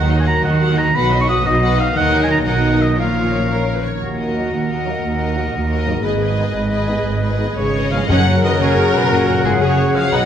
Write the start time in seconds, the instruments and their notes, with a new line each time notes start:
Already playing: double bass section D#2, cello section D#3, harp D#3 D#4 D#5, oboe F#5
0.01 harp F#3
0.09 harp A#3, viola section D#4, violin section F#4 D#5
0.17 harp D#4, oboe G#5
0.26 harp F#4, viola section F#4, violin section A#4 F#5, oboe A#5
0.35 harp A#4
0.43 double bass section D#2, cello section D#3, viola section D#4, violin section F#4 D#5, harp D#5, oboe F#5
0.51 harp F#5
0.60 viola section F#4, violin section A#4 F#5, harp D#5
0.69 harp F#4
0.77 harp D#4, viola section D#4, violin section F#4 D#5, oboe A#5
0.86 harp A#3
0.93 double bass section B1, harp B2, cello section B2, viola section F#4, violin section B4 F#5, oboe B5
1.03 harp F#3
1.11 harp B3, viola section D#4, violin section F#4 D#5
1.19 harp D#4, oboe C#6
1.27 harp F#4, viola section F#4, violin section B4 F#5, oboe D#6
1.35 harp B4
1.44 double bass section B1, cello section B2, viola section D#4, violin section F#4 D#5, oboe D#5
1.52 harp F#5
1.61 viola section F#4, violin section B4 F#5, harp D#5
1.69 harp F#4
1.78 harp D#4, viola section D#4, violin section F#4 D#5, oboe F5
1.86 harp B3
1.94 double bass section D#2, harp D#3, cello section D#3, viola section D#4, violin section A#4 D#5, oboe F#5
2.04 harp F#3
2.12 harp A#3
2.20 harp D#4, oboe G#5
2.29 harp F#4, oboe A#5
2.38 harp A#4
2.46 double bass section B1, cello section B2, viola section D#4, violin section A#4 D#5, harp D#5, oboe F#5
2.55 harp F#5
2.64 harp D#5
2.73 harp F#4
2.81 harp D#4, oboe D#5
2.90 harp A#3
2.97 double bass section A#1, cello section A#2, harp A#2, viola section F4, violin section A#4 C#5, oboe F5
3.07 harp F3
3.16 harp A#3
3.24 harp C#4
3.33 harp F4
3.41 harp A#4
3.50 viola section A#4, harp C#5
3.59 harp F5
3.69 harp C#5
3.76 harp F4, viola section B4
3.84 harp D#3 C#4, viola section C#5
3.88 harp A#3
3.93 harp A#3 D#4
3.98 double bass section D#2, cello section D#2, harp F#4, oboe A#4, flute F#5
4.16 viola section F#4, violin section A#4 D#5
4.34 trombone section D#3 F#3, french horn section A#3 D#4
4.51 double bass section D#2, cello section D#2
4.68 viola section F#4, violin section A#4 D#5
4.84 trombone section D#3 F#3, french horn section A#3 D#4
5.02 double bass section D#2, cello section D#2
5.18 viola section F#4, violin section A#4 D#5
5.35 trombone section D#3 F#3, french horn section A#3 D#4
5.52 cello section D#2, double bass section D#2
5.68 viola section F#4, violin section A#4 D#5
5.85 harp G#2, trombone section D#3 F#3, french horn section A#3 D#4
5.90 harp B3 D#4
5.99 double bass section G#1, cello section G#2, harp G#4, violin section D#5
6.03 viola section G#4, oboe B4, violin section B4, flute D#5
6.20 viola section G#4, violin section B4 D#5
6.37 trombone section D#3 G#3, french horn section B3 D#4
6.53 double bass section G#1, cello section G#2
6.70 viola section G#4, violin section B4 D#5
6.87 trombone section D#3 G#3, french horn section B3 D#4
7.05 double bass section G#1, cello section G#2
7.22 viola section G#4, violin section B4 D#5
7.39 trombone section D#3 G#3, french horn section B3 D#4
7.56 double bass section G#1, cello section G#2 C#3, flute G#4, oboe C#5, violin section C#5
7.73 viola section G#4, violin section B4 D#5
7.91 trombone section D#3 G#3, cello section F3, french horn section B3 D#4, flute C#5, oboe F5, violin section F5
8.08 double bass section F#1, timpani F#2, harp F#2, trombone section C#3 F#3, cello section F#3, violin section C#4 G#4 F#5, french horn section C#4 G#4, viola section A#4, flute C#5, oboe F#5, trumpet F#5
8.18 harp C#4
8.26 double bass section F#1, violin section C#4 G#4, harp F#4
8.35 harp G#4
8.43 double bass section F#1, cello section D#3, violin section G#3 F#4 D#5, flute B4, oboe D#5
8.52 harp F#5
8.60 double bass section F#1, cello section C#3, violin section C#4 G#4 C#5, flute G#4, oboe C#5, harp G#5
8.68 harp F#5
8.76 double bass section F#1, violin section C#4 G#4
8.93 double bass section F#1, cello section B2, violin section G#3 F#4 B4, harp C#4, flute G#4, oboe B4
9.02 harp C#3
9.10 double bass section F#1, harp F#2, cello section A#2, violin section C#4 G#4 A#4, flute F#4, oboe A#4
9.27 double bass section F#1, violin section C#4 G#4, harp F#4
9.36 harp G#4
9.44 double bass section F#1, cello section G#2, violin section G#3 F#4 G#4, flute F4, oboe G#4, harp C#5
9.53 harp F#5
9.60 double bass section F#1, cello section C#3, violin section C#4 G#4 C#5, viola section G#4, flute G#4, oboe C#5, harp G#5
9.69 harp F#5
9.77 double bass section F#1, violin section C#4 G#4, harp C#5
9.87 harp F#4
9.94 double bass section F#1, cello section F3, violin section G#3 F#4 F5, harp C#4, flute C#5, oboe F5
10.03 harp C#3
10.11 double bass section B1, harp B2, trombone section D#3 F#3, cello section F#3, french horn section B3 B4, violin section D#4 B4 F#5, flute D#5, trumpet F#5, oboe F#5
10.20 harp D#4